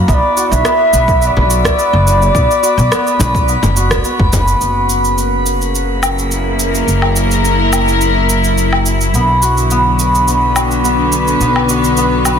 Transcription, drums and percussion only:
0.08 kick, cabasa
0.37 cabasa
0.52 cabasa
0.65 cross-stick, cabasa
0.94 cabasa
1.08 kick, cabasa
1.22 cabasa
1.37 frame drum
1.50 cabasa
1.65 kick, cross-stick, cabasa
1.79 cabasa
2.07 cabasa
2.22 cabasa
2.35 kick, cabasa
2.51 cabasa
2.64 cabasa
2.79 cabasa
2.92 cross-stick, cabasa
3.07 cabasa
3.20 frame drum, cabasa
3.35 kick, cabasa
3.48 cabasa
3.63 frame drum, cabasa
3.77 cabasa
3.91 kick, cross-stick, cabasa
4.04 cabasa
4.20 kick
4.33 kick, frame drum, cabasa
4.48 cabasa
4.61 cabasa
4.90 cabasa
5.05 cabasa
5.18 cabasa
5.46 cabasa
5.62 cabasa
5.75 cabasa
6.03 cabasa, low woodblock
6.19 cabasa
6.31 cabasa
6.60 cabasa
6.75 cabasa
6.88 cabasa
7.02 low woodblock
7.16 cabasa
7.31 cabasa
7.45 cabasa
7.73 cabasa, low woodblock
7.88 cabasa
8.01 cabasa
8.30 cabasa
8.44 cabasa
8.58 cabasa
8.73 low woodblock
8.86 cabasa
9.01 cabasa
9.14 cabasa
9.43 cabasa
9.57 cabasa
9.71 cabasa
9.99 cabasa
10.15 cabasa
10.28 cabasa
10.56 cabasa, low woodblock
10.71 cabasa
10.85 cabasa
11.12 cabasa
11.27 cabasa
11.41 cabasa
11.56 low woodblock
11.69 cabasa
11.84 cabasa
11.97 cabasa
12.25 cabasa, low woodblock

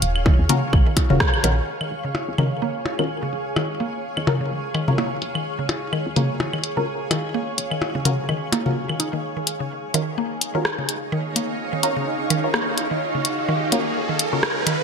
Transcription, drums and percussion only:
0.02 closed hi-hat
0.16 claves
0.26 kick, percussion blips
0.49 closed hi-hat, mid tom
0.73 kick, claves
0.97 kick, closed hi-hat, percussion blips
1.10 mid tom
1.20 kick, cross-stick
1.34 claves
1.44 closed hi-hat
1.81 claves
1.91 closed hi-hat
2.15 percussion blips
2.38 mid tom, claves
2.86 percussion blips
2.99 claves
3.33 closed hi-hat
3.56 percussion blips, claves
3.80 closed hi-hat
4.17 claves
4.27 closed hi-hat, mid tom, percussion blips
4.74 closed hi-hat, claves
4.88 mid tom
4.98 percussion blips
5.22 closed hi-hat
5.35 claves
5.69 closed hi-hat, percussion blips
5.93 claves
6.16 closed hi-hat, mid tom
6.40 percussion blips
6.53 claves
6.64 closed hi-hat
7.11 closed hi-hat, percussion blips, claves
7.58 closed hi-hat
7.71 claves
7.82 percussion blips
8.05 closed hi-hat, mid tom
8.29 claves
8.52 closed hi-hat, percussion blips
8.66 mid tom
8.89 claves
9.00 closed hi-hat
9.47 closed hi-hat
9.94 closed hi-hat
10.41 closed hi-hat
10.65 cross-stick
10.89 closed hi-hat
11.36 closed hi-hat
11.83 closed hi-hat
12.30 closed hi-hat
12.54 cross-stick
12.78 closed hi-hat
13.25 closed hi-hat
13.72 closed hi-hat
14.19 closed hi-hat
14.43 cross-stick
14.67 closed hi-hat

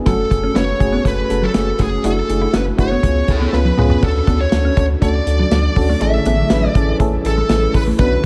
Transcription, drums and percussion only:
0.06 kick, closed hi-hat
0.31 kick, closed hi-hat
0.56 snare, closed hi-hat
0.80 kick, closed hi-hat
1.05 kick, closed hi-hat
1.30 closed hi-hat
1.54 snare, closed hi-hat
1.79 kick, closed hi-hat
2.04 closed hi-hat
2.30 closed hi-hat
2.54 snare, closed hi-hat
2.79 kick, closed hi-hat
3.03 kick, closed hi-hat
3.28 kick, closed hi-hat
3.53 snare
3.65 high tom
3.78 mid tom
3.90 floor tom
4.02 kick, crash
4.27 kick, closed hi-hat
4.52 snare, closed hi-hat
4.77 kick, closed hi-hat
5.02 kick, closed hi-hat
5.27 closed hi-hat
5.51 snare, closed hi-hat
5.76 kick, open hi-hat
6.01 closed hi-hat
6.26 closed hi-hat
6.50 snare, closed hi-hat
6.75 kick, closed hi-hat
7.00 kick, closed hi-hat
7.25 closed hi-hat
7.49 snare, closed hi-hat
7.74 kick, open hi-hat
7.99 kick, closed hi-hat

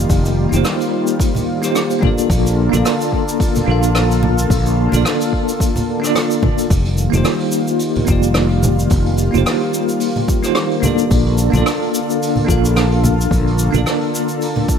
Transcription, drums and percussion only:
0.10 kick, open hi-hat, shaker
0.25 open hi-hat, shaker
0.53 high conga, shaker
0.64 cross-stick, open hi-hat, shaker
0.80 open hi-hat, shaker
1.07 shaker
1.20 kick, open hi-hat, shaker
1.35 open hi-hat, high conga, low conga, shaker
1.63 cross-stick, shaker
1.75 cross-stick, open hi-hat, shaker
1.90 open hi-hat, shaker
2.02 kick, high conga, low conga
2.18 shaker
2.30 kick, open hi-hat, shaker
2.45 open hi-hat, shaker
2.73 high conga, shaker
2.85 cross-stick, open hi-hat, shaker
3.00 open hi-hat, shaker
3.12 kick
3.28 shaker
3.40 kick, open hi-hat, shaker
3.55 open hi-hat, high conga, low conga, shaker
3.83 shaker
3.95 cross-stick, open hi-hat, shaker
4.11 open hi-hat, shaker
4.23 high conga, low conga
4.38 shaker
4.50 kick, open hi-hat, shaker
4.66 open hi-hat, shaker
4.92 open hi-hat, high conga, shaker
5.05 cross-stick, open hi-hat, shaker
5.20 open hi-hat, shaker
5.33 kick
5.48 open hi-hat, shaker
5.60 kick, open hi-hat, shaker
5.76 open hi-hat, high conga, low conga, shaker
6.04 cross-stick, open hi-hat, shaker
6.16 cross-stick, open hi-hat, shaker
6.30 open hi-hat, shaker
6.43 kick, high conga, low conga
6.58 open hi-hat, shaker
6.70 kick, open hi-hat, shaker
6.85 open hi-hat
6.97 shaker
7.13 high conga, shaker
7.25 cross-stick, open hi-hat, shaker
7.40 open hi-hat
7.52 shaker
7.68 shaker
7.79 open hi-hat, shaker
7.95 open hi-hat, high conga, low conga
8.07 kick, shaker
8.23 shaker
8.34 cross-stick, open hi-hat, shaker
8.50 open hi-hat
8.63 high conga, low conga, shaker
8.79 shaker
8.90 kick, open hi-hat, shaker
9.06 open hi-hat
9.18 shaker
9.34 high conga, shaker
9.46 cross-stick, open hi-hat, shaker
9.61 open hi-hat
9.74 shaker
9.89 shaker
10.00 open hi-hat, shaker
10.16 open hi-hat, high conga, low conga
10.28 kick, shaker
10.43 cross-stick, shaker
10.55 cross-stick, open hi-hat, shaker
10.71 open hi-hat
10.83 high conga, low conga, shaker
10.98 shaker
11.11 kick, open hi-hat, shaker
11.26 open hi-hat
11.38 shaker
11.54 high conga, shaker
11.66 cross-stick, open hi-hat, shaker
11.82 open hi-hat
11.94 shaker
12.10 shaker
12.22 open hi-hat, shaker
12.36 open hi-hat, high conga, low conga
12.48 kick, shaker
12.65 shaker
12.76 cross-stick, open hi-hat, shaker
12.92 open hi-hat
13.04 high conga, low conga, shaker
13.21 shaker
13.31 kick, open hi-hat, shaker
13.47 open hi-hat
13.58 shaker
13.74 high conga, shaker
13.86 cross-stick, open hi-hat, shaker
14.01 open hi-hat
14.15 shaker
14.28 shaker
14.41 open hi-hat, shaker
14.55 open hi-hat, high conga, low conga
14.69 kick, shaker

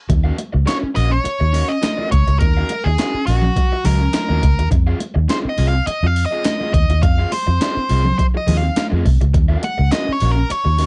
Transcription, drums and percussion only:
0.10 kick, closed hi-hat, muted conga
0.38 closed hi-hat, muted conga
0.67 snare, clap, closed hi-hat, high conga
0.96 open hi-hat
1.25 closed hi-hat
1.54 open hi-hat
1.83 snare, clap, closed hi-hat, high conga
1.99 high conga
2.12 kick, closed hi-hat
2.28 closed hi-hat
2.41 kick, closed hi-hat, muted conga
2.69 closed hi-hat, muted conga
2.98 snare, clap, closed hi-hat, high conga
3.27 open hi-hat
3.42 low conga
3.56 kick, closed hi-hat, muted conga
3.84 open hi-hat, low conga
4.13 snare, clap, closed hi-hat, high conga
4.30 high conga
4.43 kick, closed hi-hat
4.59 closed hi-hat
4.71 kick, closed hi-hat, muted conga
5.00 closed hi-hat, muted conga
5.29 snare, clap, closed hi-hat, high conga
5.58 open hi-hat
5.87 closed hi-hat
6.16 open hi-hat
6.44 snare, clap, closed hi-hat, high conga
6.61 high conga
6.74 kick, closed hi-hat
6.90 closed hi-hat
7.03 kick, closed hi-hat, muted conga
7.32 open hi-hat, muted conga
7.61 snare, clap, closed hi-hat, high conga
7.89 open hi-hat
8.05 low conga
8.19 kick, closed hi-hat
8.47 open hi-hat, low conga
8.76 snare, clap, closed hi-hat, high conga
8.92 high conga
9.06 kick, open hi-hat
9.21 closed hi-hat
9.34 kick, closed hi-hat, muted conga
9.63 closed hi-hat, muted conga
9.92 snare, clap, closed hi-hat, high conga
10.20 open hi-hat
10.50 closed hi-hat
10.78 open hi-hat

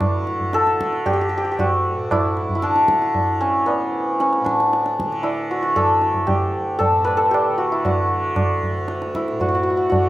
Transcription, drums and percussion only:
0.01 tabla na, tabla ge
0.27 tabla te
0.40 tabla ge
0.53 tabla te
0.67 tabla te
0.81 tabla ke
0.93 tabla te
1.06 tabla tin, tabla ge
1.59 tabla tin, tabla ge
2.11 tabla na, tabla ge
2.37 tabla te
2.49 tabla ge
2.62 tabla te
2.76 tabla te
2.88 tabla ke
3.02 tabla te
3.15 tabla tin, tabla ge
3.68 tabla tin
4.20 tabla te
4.33 tabla te
4.46 tabla ke
4.60 tabla te
4.73 tabla te
4.86 tabla te
5.00 tabla ke
5.12 tabla te
5.24 tabla tin
5.76 tabla na, tabla ge
6.02 tabla te
6.15 tabla ge
6.28 tabla tin, tabla ge
6.80 tabla tin, tabla ge
7.08 tabla na
7.34 tabla na
7.85 tabla tin, tabla ge
8.36 tabla na, tabla ge
8.63 tabla ge
8.88 tabla te
9.02 tabla te
9.15 tabla ke
9.28 tabla te
9.40 tabla tin, tabla ge
9.92 tabla tin, tabla ge

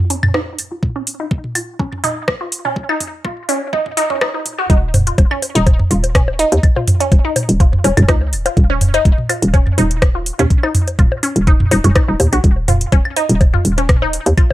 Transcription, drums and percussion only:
0.10 open hi-hat
0.23 mid tom, high tom, claves
0.34 cross-stick
0.59 open hi-hat
0.83 kick, high tom
1.07 open hi-hat
1.31 kick
1.44 high tom
1.55 open hi-hat, claves
1.79 kick
1.92 mid tom
2.04 open hi-hat, high tom
2.28 kick, cross-stick
2.52 open hi-hat
2.65 high tom
2.76 kick
2.89 claves
3.00 mid tom, open hi-hat
3.25 kick, high tom
3.49 open hi-hat
3.73 kick
3.86 mid tom, high tom
3.97 open hi-hat
4.10 mid tom
4.21 kick, cross-stick, claves
4.46 open hi-hat, high tom
4.70 kick, closed hi-hat
4.94 mid tom, open hi-hat, high tom, high bongo
5.07 closed hi-hat
5.18 kick, closed hi-hat, high bongo
5.31 claves
5.42 open hi-hat, high bongo
5.55 closed hi-hat, high tom
5.67 kick, closed hi-hat, high bongo
5.80 mid tom
5.91 open hi-hat
6.04 closed hi-hat, high bongo
6.15 kick, cross-stick, closed hi-hat, high tom
6.28 high bongo
6.39 open hi-hat
6.52 closed hi-hat, high bongo
6.63 kick, closed hi-hat, claves
6.76 high tom, high bongo
6.88 mid tom, open hi-hat
7.00 closed hi-hat
7.12 kick, closed hi-hat, high bongo
7.36 open hi-hat, high tom, high bongo
7.49 closed hi-hat
7.60 kick, closed hi-hat, high bongo
7.73 mid tom
7.84 open hi-hat, high bongo
7.97 closed hi-hat, mid tom, high tom, claves
8.09 kick, cross-stick, closed hi-hat
8.21 high bongo
8.33 open hi-hat
8.46 closed hi-hat, high bongo
8.57 kick, closed hi-hat, high tom
8.70 high bongo
8.81 mid tom, open hi-hat
8.94 closed hi-hat, high bongo
9.05 kick, closed hi-hat
9.18 high tom
9.29 open hi-hat, high bongo, claves
9.42 closed hi-hat
9.54 kick, closed hi-hat, high bongo
9.67 mid tom
9.78 open hi-hat, high tom, high bongo
9.91 closed hi-hat
10.02 kick, cross-stick, closed hi-hat, high bongo
10.26 open hi-hat
10.39 closed hi-hat, high tom, high bongo
10.50 kick, closed hi-hat
10.63 high bongo, claves
10.75 mid tom, open hi-hat
10.88 closed hi-hat, high bongo
10.99 kick, closed hi-hat, high tom
11.12 high bongo
11.23 open hi-hat
11.36 closed hi-hat
11.47 kick, closed hi-hat, high bongo
11.60 mid tom, high tom
11.71 open hi-hat, high bongo
11.84 closed hi-hat, mid tom
11.96 kick, cross-stick, closed hi-hat, high bongo, claves
12.20 open hi-hat, high tom, high bongo
12.33 closed hi-hat
12.44 kick, closed hi-hat
12.68 mid tom, open hi-hat, high tom, high bongo
12.81 closed hi-hat
12.92 kick, closed hi-hat, high bongo
13.05 claves
13.16 open hi-hat, high bongo
13.29 closed hi-hat, high tom
13.41 kick, closed hi-hat, high bongo
13.54 mid tom
13.65 open hi-hat
13.78 closed hi-hat, high bongo
13.89 kick, cross-stick, closed hi-hat, high tom
14.02 high bongo
14.13 open hi-hat
14.26 closed hi-hat, high bongo
14.38 kick, closed hi-hat, claves

